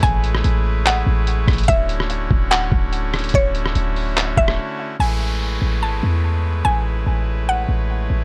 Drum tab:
HH |x---x---x-------x-------x---xxxx|x---x---x-------x-------x---xxxx|x---x---x---o---x---------------|--------------------------------|
CP |----------------x---------------|----------------x---------------|----------------x---------------|--------------------------------|
SD |------r---------------------r---|------r---------------------r---|------r---------------r---------|--------------------------------|
BD |o---------------------------o---|o-----------o-------o-----------|o-------------------o-----------|--------------------------------|

HH |--------------------------------|
CP |--------------------------------|
SD |--------------------------------|
BD |--------------------------------|